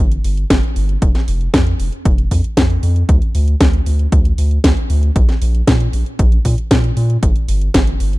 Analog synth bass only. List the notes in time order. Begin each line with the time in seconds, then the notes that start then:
0.00 G1
0.24 G1
0.50 G1
0.76 G1
1.02 F1
1.28 F1
1.54 F2
1.80 F1
2.05 F1
2.31 F2
2.57 F2
2.83 F2
3.09 D2
3.35 D2
3.61 D2
3.87 D2
4.12 D2
4.38 D2
4.64 D2
4.90 D2
5.16 A#1
5.42 A#1
5.68 A#2
5.93 A#1
6.19 A#1
6.45 A#2
6.71 A#2
6.97 A#2
7.23 G1
7.49 G1
7.74 G1
8.00 G1